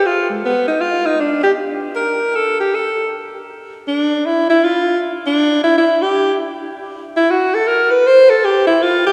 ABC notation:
X:1
M:3/4
L:1/8
Q:"Swing" 1/4=158
K:Am
V:1 name="Alto saxophone"
F _A, B, _E F E | D G z2 _B2 | A G A2 z2 | [K:Ephr] z2 D2 E E |
F2 z D2 E | E G2 z3 | z E ^F A _B =B | c A G E F G |]